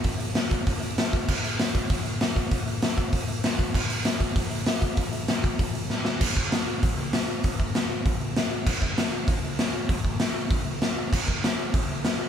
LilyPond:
\new DrumStaff \with { instrumentName = "Drums" } \drummode { \time 4/4 \tempo 4 = 195 <hho bd>8 hho8 <hho sn>8 <hho bd>8 <hho bd>8 hho8 <hho sn>8 <hho bd>8 | <cymc bd>8 hho8 <hho sn>8 <hho bd>8 <hho bd>8 hho8 <hho sn>8 <hho bd>8 | <hho bd>8 hho8 <hho sn>8 <hho bd>8 <hho bd>8 hho8 <hho sn>8 <hho bd>8 | <cymc bd>8 hho8 <hho sn>8 <hho bd>8 <hho bd>8 hho8 <hho sn>8 <hho bd>8 |
<hho bd>8 hho8 <hho sn>8 <hho bd>8 <hho bd>8 hho8 sn8 sn8 | <cymc bd>8 bd8 <hho sn>4 <hho bd>4 <hho sn>4 | <hho bd>8 bd8 <hho sn>4 <hho bd>4 <hho sn>4 | <cymc bd>8 bd8 <hho sn>4 <hho bd>4 <hho sn>4 |
<hho bd>8 bd8 <hho sn>4 <hho bd>4 <hho sn>4 | <cymc bd>8 bd8 <hho sn>4 <hho bd>4 <hho sn>4 | }